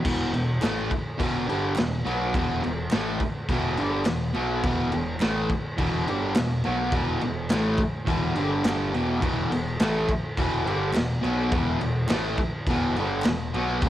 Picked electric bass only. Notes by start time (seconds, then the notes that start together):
0.06 E1
0.34 E1
0.64 A1
0.91 muted picked electric bass stroke
1.20 E1
1.50 G1
1.79 E1
2.05 B1
2.35 E1
2.65 E1
2.93 A1
3.20 muted picked electric bass stroke
3.49 E1
3.78 G1
4.07 E1
4.36 B1
4.64 E1
4.93 E1
5.22 A1
5.50 muted picked electric bass stroke
5.78 E1
6.08 G1
6.37 E1
6.67 B1
6.92 E1
7.22 E1
7.52 A1
7.79 muted picked electric bass stroke
8.07 E1
8.35 G1
8.63 G1
8.94 E1
9.22 E1
9.50 E1
9.79 A1
10.37 E1
10.66 G1
10.94 E1
11.23 B1
11.52 E1
11.80 E1
12.09 A1
12.38 muted picked electric bass stroke
12.67 E1
12.96 G1
13.25 E1
13.55 B1
13.83 E1